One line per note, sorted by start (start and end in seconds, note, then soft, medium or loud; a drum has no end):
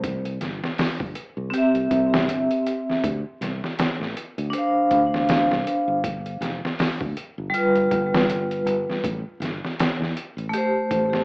0.00 0.38 C2 medium
0.00 kick medium
0.00 closed hi-hat medium
0.25 closed hi-hat soft
0.41 0.60 G1 medium
0.41 snare soft
0.41 closed hi-hat medium
0.64 snare medium
0.78 snare loud
0.78 open hi-hat medium
1.00 1.14 G1 medium
1.00 kick medium
1.15 closed hi-hat medium
1.37 1.51 C2 medium
1.50 3.00 C4 medium
1.50 3.02 G4 medium
1.50 closed hi-hat medium
1.58 3.04 E5 loud
1.74 1.89 C2 medium
1.74 closed hi-hat soft
1.91 2.27 C2 medium
1.91 kick medium
1.91 closed hi-hat medium
2.14 snare loud
2.28 2.47 G1 medium
2.28 closed hi-hat medium
2.51 closed hi-hat soft
2.67 closed hi-hat medium
2.90 snare soft
3.04 3.23 D2 medium
3.04 kick medium
3.04 closed hi-hat medium
3.41 3.60 C2 medium
3.41 snare soft
3.41 closed hi-hat medium
3.64 snare soft
3.79 snare loud
3.79 closed hi-hat medium
4.00 4.14 A1 medium
4.00 snare soft
4.17 closed hi-hat medium
4.38 4.52 D2 medium
4.38 closed hi-hat soft
4.50 6.00 D4 loud
4.50 closed hi-hat medium
4.54 6.02 C5 medium
4.54 6.04 F5 loud
4.91 5.46 D2 medium
4.91 kick medium
4.91 closed hi-hat medium
5.14 snare soft
5.29 snare loud
5.29 closed hi-hat medium
5.50 5.64 C2 medium
5.50 snare medium
5.67 closed hi-hat medium
5.88 6.38 G1 medium
6.04 kick loud
6.04 closed hi-hat medium
6.26 closed hi-hat soft
6.41 6.60 F1 medium
6.41 snare soft
6.41 closed hi-hat medium
6.65 snare medium
6.79 snare loud
6.79 open hi-hat medium
7.01 7.14 D2 medium
7.01 kick medium
7.17 closed hi-hat medium
7.38 7.52 G1 loud
7.50 9.00 G3 loud
7.54 9.02 F4 medium
7.54 9.04 B4 loud
7.54 closed hi-hat medium
7.75 7.89 G1 medium
7.75 closed hi-hat soft
7.91 8.63 G1 loud
7.91 kick medium
7.91 closed hi-hat medium
8.14 snare loud
8.30 closed hi-hat medium
8.51 closed hi-hat soft
8.66 8.85 G1 medium
8.66 closed hi-hat medium
8.90 snare soft
9.04 9.23 A1 medium
9.04 kick loud
9.04 closed hi-hat medium
9.40 9.60 G1 loud
9.40 snare soft
9.40 closed hi-hat medium
9.64 snare soft
9.79 snare loud
9.79 closed hi-hat medium
10.00 10.14 E2 medium
10.00 snare soft
10.17 closed hi-hat medium
10.37 10.51 A1 medium
10.37 closed hi-hat soft
10.49 11.24 A3 medium
10.53 11.24 G4 medium
10.53 closed hi-hat medium
10.57 11.24 C5 loud
10.91 11.24 A1 medium
10.91 kick medium
10.91 closed hi-hat medium
11.13 snare medium